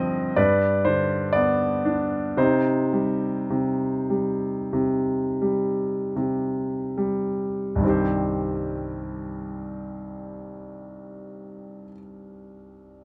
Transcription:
Already playing: G2 D3 F3 C4 C5 D#5 F5
0.36 G2 B4 D5
0.85 D3 C5
1.33 B3 D5
1.85 D4
2.37 C3 D#4 C5
2.93 G3
3.50 C3
4.10 G3
4.73 C3
5.42 G3
6.16 C3
6.97 G3
7.75 C2 G2
7.81 D#3 C4
7.87 G4 C5

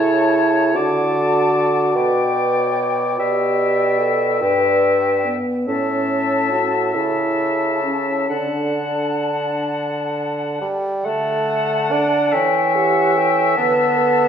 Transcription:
Already playing: C#3 E4 A4 C#5 A5
0.73 D3 F#4 A4 D5 A5
1.94 B2 B4 D5 G5
2.58 C#5
3.17 B2 G4 D5 E5 G5
3.99 A4
4.40 G2 B4 D5 E5 G5
5.26 B3
5.66 A2 C#4 A4 E5 A5
6.51 F#4
6.93 C#3 E4 A4 E5 A5
7.83 C#4
8.28 D3 D4 A4 F#5 A5
10.61 G3
11.04 D3 A3 F#5 A5
11.92 D4
12.32 E3 C#4 A4 E5 G5
12.75 G4 F#5
13.16 A4 G5
13.56 D3 B3 B4 A5
13.96 A4

